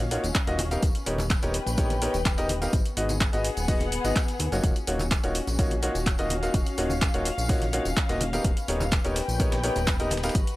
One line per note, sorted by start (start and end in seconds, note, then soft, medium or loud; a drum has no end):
0.00 0.18 A#1 medium
0.00 3.49 C#4 medium
0.00 0.59 F#4 medium
0.00 1.36 F5 medium
0.00 snare soft
0.00 shaker soft
0.11 0.24 A#3 medium
0.11 0.24 D#4 medium
0.11 0.24 F4 medium
0.11 0.24 F#4 medium
0.11 0.24 C#5 medium
0.11 closed hi-hat medium
0.11 open hi-hat loud
0.11 shaker medium
0.24 0.32 D#1 medium
0.24 closed hi-hat soft
0.24 tambourine medium
0.24 shaker soft
0.35 kick loud
0.35 snare loud
0.35 clap loud
0.35 closed hi-hat medium
0.35 tambourine medium
0.35 shaker soft
0.47 0.77 D#1 loud
0.47 0.57 A#3 medium
0.47 0.57 D#4 medium
0.47 0.57 F4 medium
0.47 0.57 F#4 medium
0.47 0.57 D#5 loud
0.47 snare soft
0.47 closed hi-hat medium
0.47 tambourine soft
0.47 shaker soft
0.59 closed hi-hat medium
0.59 open hi-hat loud
0.59 high conga loud
0.59 shaker medium
0.71 0.83 B3 medium
0.71 0.83 D#4 medium
0.71 0.83 G4 medium
0.71 0.83 A#4 medium
0.71 0.83 F5 medium
0.71 snare soft
0.71 closed hi-hat soft
0.71 tambourine medium
0.71 shaker soft
0.82 0.91 D#1 loud
0.82 kick loud
0.82 closed hi-hat medium
0.82 tambourine medium
0.82 shaker soft
0.87 3.32 B4 medium
0.95 closed hi-hat soft
0.95 tambourine soft
0.95 shaker soft
1.06 1.37 D#1 loud
1.06 1.19 B3 medium
1.06 1.19 D#4 medium
1.06 1.19 G4 medium
1.06 1.19 A#4 medium
1.06 1.19 C#5 medium
1.06 closed hi-hat medium
1.06 open hi-hat loud
1.06 shaker medium
1.18 clap soft
1.18 tambourine medium
1.18 high conga medium
1.18 shaker soft
1.30 kick loud
1.30 snare loud
1.30 clap loud
1.30 closed hi-hat medium
1.30 tambourine medium
1.30 shaker soft
1.42 1.59 D#1 medium
1.42 1.54 B3 medium
1.42 1.54 D#4 medium
1.42 1.54 G4 medium
1.42 1.54 A#4 medium
1.42 1.54 C#5 medium
1.42 closed hi-hat soft
1.42 tambourine soft
1.42 shaker soft
1.54 2.73 G5 medium
1.54 closed hi-hat medium
1.54 open hi-hat loud
1.54 shaker medium
1.66 2.08 A#1 medium
1.66 snare medium
1.66 tambourine medium
1.66 shaker soft
1.77 1.91 B3 medium
1.77 1.91 D#4 medium
1.77 1.91 G4 medium
1.77 1.91 A#4 medium
1.77 1.91 C#5 loud
1.77 kick loud
1.77 closed hi-hat medium
1.77 tambourine medium
1.77 shaker soft
1.90 closed hi-hat soft
1.90 tambourine soft
1.90 high conga medium
1.90 shaker soft
2.02 2.14 B3 medium
2.02 2.14 D#4 medium
2.02 2.14 G4 medium
2.02 2.14 A#4 medium
2.02 2.14 C#5 medium
2.02 closed hi-hat medium
2.02 open hi-hat loud
2.02 shaker medium
2.14 2.68 D#1 medium
2.14 closed hi-hat soft
2.14 tambourine medium
2.14 shaker soft
2.25 kick loud
2.25 snare loud
2.25 clap loud
2.25 closed hi-hat medium
2.25 tambourine medium
2.25 shaker soft
2.38 2.50 B3 medium
2.38 2.50 D#4 medium
2.38 2.50 G4 medium
2.38 2.50 A#4 medium
2.38 2.50 D#5 loud
2.38 closed hi-hat soft
2.38 tambourine soft
2.38 shaker soft
2.49 closed hi-hat medium
2.49 open hi-hat loud
2.49 high conga medium
2.49 shaker medium
2.62 2.72 B3 medium
2.62 2.72 D#4 medium
2.62 2.72 G4 medium
2.62 2.72 A#4 medium
2.62 2.72 F5 medium
2.62 snare soft
2.62 closed hi-hat soft
2.62 tambourine medium
2.62 shaker soft
2.73 2.82 G#1 medium
2.73 4.64 B3 medium
2.73 kick loud
2.73 closed hi-hat medium
2.73 tambourine medium
2.73 shaker soft
2.86 closed hi-hat soft
2.86 tambourine soft
2.86 shaker soft
2.95 3.27 G#1 medium
2.95 3.10 B3 medium
2.95 3.10 D#4 medium
2.95 3.10 F#4 medium
2.95 5.24 G#4 medium
2.95 3.10 G#4 medium
2.95 3.10 D#5 medium
2.95 closed hi-hat medium
2.95 open hi-hat loud
2.95 shaker medium
3.09 closed hi-hat soft
3.09 tambourine medium
3.09 high conga medium
3.09 shaker soft
3.20 kick loud
3.20 snare loud
3.20 clap loud
3.20 closed hi-hat medium
3.20 tambourine medium
3.20 shaker soft
3.33 3.50 G#1 medium
3.33 3.45 B3 medium
3.33 3.45 D#4 medium
3.33 3.45 F#4 medium
3.33 3.45 G#4 medium
3.33 3.45 D#5 medium
3.33 closed hi-hat soft
3.33 tambourine soft
3.33 shaker soft
3.44 closed hi-hat medium
3.44 open hi-hat loud
3.44 shaker medium
3.49 4.64 F#5 medium
3.57 3.99 D#1 medium
3.57 closed hi-hat soft
3.57 tambourine medium
3.57 shaker soft
3.68 3.81 B3 medium
3.68 3.81 D#4 medium
3.68 3.81 F#4 medium
3.68 3.81 G#4 medium
3.68 3.81 D#5 loud
3.68 kick loud
3.68 closed hi-hat medium
3.68 open hi-hat medium
3.68 tambourine medium
3.68 shaker soft
3.80 snare soft
3.80 closed hi-hat soft
3.80 tambourine soft
3.80 high conga medium
3.80 shaker soft
3.92 closed hi-hat medium
3.92 open hi-hat loud
3.92 shaker medium
4.04 4.13 G#1 medium
4.04 4.16 B3 medium
4.04 4.16 D#4 medium
4.04 4.16 F#4 medium
4.04 4.16 G#4 medium
4.04 4.16 D#5 medium
4.04 closed hi-hat soft
4.04 tambourine medium
4.04 shaker soft
4.16 kick loud
4.16 snare loud
4.16 clap loud
4.16 closed hi-hat medium
4.16 tambourine medium
4.16 shaker soft
4.28 snare soft
4.28 closed hi-hat soft
4.28 tambourine soft
4.28 shaker soft
4.39 4.49 D#2 medium
4.39 closed hi-hat medium
4.39 open hi-hat loud
4.39 high conga medium
4.39 shaker medium
4.52 4.60 F#1 medium
4.52 4.72 A#3 medium
4.52 4.72 D#4 medium
4.52 4.72 F4 medium
4.52 4.72 F#4 medium
4.52 4.72 C#5 medium
4.52 snare soft
4.52 closed hi-hat soft
4.52 tambourine medium
4.52 shaker soft
4.64 4.72 D#1 medium
4.64 10.56 C#4 medium
4.64 kick loud
4.64 closed hi-hat medium
4.64 tambourine medium
4.64 shaker soft
4.76 closed hi-hat soft
4.76 tambourine soft
4.76 shaker soft
4.84 5.18 D#1 loud
4.84 5.00 A#3 medium
4.84 5.00 D#4 medium
4.84 5.00 F4 medium
4.84 8.21 F#4 medium
4.84 5.00 F#4 medium
4.84 5.00 C#5 medium
4.84 closed hi-hat medium
4.84 open hi-hat loud
4.84 shaker medium
4.99 clap soft
4.99 tambourine medium
4.99 high conga medium
4.99 shaker soft
5.11 kick loud
5.11 snare loud
5.11 clap loud
5.11 closed hi-hat medium
5.11 tambourine medium
5.11 shaker soft
5.24 5.40 D#1 medium
5.24 5.35 A#3 medium
5.24 5.35 D#4 medium
5.24 5.35 F4 medium
5.24 5.35 F#4 medium
5.24 5.35 C#5 medium
5.24 closed hi-hat soft
5.24 tambourine soft
5.24 shaker soft
5.35 closed hi-hat medium
5.35 open hi-hat loud
5.35 shaker medium
5.47 5.89 A#1 medium
5.47 snare medium
5.47 tambourine medium
5.47 shaker soft
5.59 5.72 A#3 medium
5.59 5.72 D#4 medium
5.59 5.72 F4 medium
5.59 5.72 F#4 medium
5.59 5.72 C#5 loud
5.59 kick loud
5.59 closed hi-hat medium
5.59 tambourine medium
5.59 shaker soft
5.71 closed hi-hat soft
5.71 tambourine soft
5.71 high conga medium
5.71 shaker soft
5.80 5.95 A#3 medium
5.80 5.95 D#4 medium
5.80 5.95 F4 medium
5.80 5.95 F#4 medium
5.80 5.95 C#5 medium
5.80 9.07 F5 medium
5.80 closed hi-hat medium
5.80 open hi-hat loud
5.80 shaker medium
5.95 6.49 D#1 medium
5.95 closed hi-hat soft
5.95 tambourine medium
5.95 shaker soft
6.06 kick loud
6.06 snare loud
6.06 clap loud
6.06 closed hi-hat medium
6.06 tambourine medium
6.06 shaker soft
6.18 6.31 A#3 medium
6.18 6.31 D#4 medium
6.18 6.31 F4 medium
6.18 6.31 F#4 medium
6.18 6.31 D#5 loud
6.18 closed hi-hat soft
6.18 tambourine soft
6.18 shaker soft
6.30 closed hi-hat medium
6.30 open hi-hat loud
6.30 high conga medium
6.30 shaker medium
6.43 6.54 A#3 medium
6.43 6.54 D#4 medium
6.43 6.54 F4 medium
6.43 6.54 F#4 medium
6.43 6.54 F5 medium
6.43 snare soft
6.43 closed hi-hat soft
6.43 tambourine medium
6.43 shaker soft
6.54 6.63 D#1 loud
6.54 kick loud
6.54 closed hi-hat medium
6.54 tambourine medium
6.54 shaker soft
6.66 closed hi-hat soft
6.66 tambourine soft
6.66 shaker soft
6.78 7.08 D#1 loud
6.78 6.91 A#3 medium
6.78 6.91 D#4 medium
6.78 6.91 F4 medium
6.78 6.91 F#4 medium
6.78 6.91 C#5 medium
6.78 closed hi-hat medium
6.78 open hi-hat loud
6.78 shaker medium
6.90 tambourine medium
6.90 high conga medium
6.90 shaker soft
7.01 kick loud
7.01 snare loud
7.01 clap loud
7.01 closed hi-hat medium
7.01 tambourine medium
7.01 shaker soft
7.14 7.31 D#1 medium
7.14 7.26 A#3 medium
7.14 7.26 D#4 medium
7.14 7.26 F4 medium
7.14 7.26 F#4 medium
7.14 7.26 C#5 medium
7.14 closed hi-hat medium
7.14 tambourine soft
7.14 shaker soft
7.25 closed hi-hat medium
7.25 open hi-hat loud
7.25 shaker medium
7.38 7.80 A#1 medium
7.38 tambourine medium
7.38 shaker soft
7.49 7.62 A#3 medium
7.49 7.62 D#4 medium
7.49 7.62 F4 medium
7.49 7.62 F#4 medium
7.49 7.62 C#5 loud
7.49 kick loud
7.49 closed hi-hat medium
7.49 open hi-hat medium
7.49 tambourine medium
7.49 shaker soft
7.62 snare soft
7.62 closed hi-hat medium
7.62 tambourine soft
7.62 high conga medium
7.62 shaker soft
7.73 7.86 A#3 medium
7.73 7.86 D#4 medium
7.73 7.86 F4 medium
7.73 7.86 F#4 medium
7.73 7.86 C#5 medium
7.73 closed hi-hat medium
7.73 open hi-hat loud
7.73 shaker medium
7.85 7.94 D#1 medium
7.85 closed hi-hat soft
7.85 tambourine medium
7.85 shaker soft
7.97 kick loud
7.97 snare loud
7.97 clap loud
7.97 closed hi-hat medium
7.97 shaker soft
8.09 8.39 D#1 medium
8.09 8.19 A#3 medium
8.09 8.19 D#4 medium
8.09 8.19 F4 medium
8.09 8.19 F#4 medium
8.09 8.19 D#5 loud
8.09 snare soft
8.09 closed hi-hat medium
8.09 tambourine soft
8.09 shaker soft
8.21 closed hi-hat medium
8.21 open hi-hat loud
8.21 high conga medium
8.21 shaker medium
8.33 8.45 B3 medium
8.33 8.45 D#4 medium
8.33 8.45 G4 medium
8.33 8.45 A#4 medium
8.33 10.56 B4 medium
8.33 8.45 F5 medium
8.33 snare soft
8.33 closed hi-hat soft
8.33 tambourine medium
8.33 shaker soft
8.45 8.53 D#1 medium
8.45 kick loud
8.45 closed hi-hat medium
8.45 shaker soft
8.57 closed hi-hat medium
8.57 tambourine soft
8.57 shaker soft
8.68 8.99 D#1 loud
8.68 8.81 B3 medium
8.68 8.81 D#4 medium
8.68 8.81 G4 medium
8.68 8.81 A#4 medium
8.68 8.81 C#5 medium
8.68 closed hi-hat medium
8.68 open hi-hat loud
8.68 shaker medium
8.80 clap soft
8.80 tambourine medium
8.80 high conga medium
8.80 shaker soft
8.91 kick loud
8.91 snare loud
8.91 clap loud
8.91 closed hi-hat medium
8.91 tambourine medium
8.91 shaker soft
9.05 9.21 D#1 medium
9.05 9.16 B3 medium
9.05 9.16 D#4 medium
9.05 9.16 G4 medium
9.05 9.16 A#4 medium
9.05 9.16 C#5 medium
9.05 closed hi-hat medium
9.05 tambourine soft
9.05 shaker soft
9.10 10.35 G5 medium
9.16 snare loud
9.16 closed hi-hat medium
9.16 open hi-hat loud
9.16 shaker medium
9.28 9.70 A#1 medium
9.28 tambourine medium
9.28 shaker soft
9.40 9.53 B3 medium
9.40 9.53 D#4 medium
9.40 9.53 G4 medium
9.40 9.53 A#4 medium
9.40 9.53 C#5 loud
9.40 kick loud
9.40 closed hi-hat medium
9.40 tambourine medium
9.40 shaker soft
9.52 snare loud
9.52 closed hi-hat medium
9.52 tambourine soft
9.52 high conga medium
9.52 shaker soft
9.64 9.76 B3 medium
9.64 9.76 D#4 medium
9.64 9.76 G4 medium
9.64 9.76 A#4 medium
9.64 9.76 C#5 medium
9.64 snare soft
9.64 open hi-hat loud
9.64 shaker medium
9.76 10.30 D#1 medium
9.76 closed hi-hat medium
9.76 tambourine medium
9.76 shaker soft
9.87 kick loud
9.87 snare loud
9.87 clap loud
9.87 closed hi-hat medium
9.87 tambourine medium
9.87 shaker soft
10.00 10.12 B3 medium
10.00 10.12 D#4 medium
10.00 10.12 G4 medium
10.00 10.12 A#4 medium
10.00 10.12 D#5 loud
10.00 closed hi-hat medium
10.00 tambourine soft
10.00 shaker soft
10.11 snare medium
10.11 closed hi-hat medium
10.11 open hi-hat loud
10.11 high conga medium
10.11 shaker medium
10.17 snare medium
10.17 closed hi-hat medium
10.23 10.34 B3 medium
10.23 10.34 D#4 medium
10.23 10.34 G4 medium
10.23 10.34 A#4 medium
10.23 10.34 F5 medium
10.23 snare medium
10.23 closed hi-hat soft
10.23 closed hi-hat medium
10.23 tambourine medium
10.23 shaker soft
10.29 snare medium
10.29 closed hi-hat medium
10.35 10.44 G#1 loud
10.35 10.56 F#4 medium
10.35 kick loud
10.35 closed hi-hat medium
10.35 tambourine medium
10.35 shaker soft
10.47 closed hi-hat medium
10.47 tambourine soft
10.47 shaker soft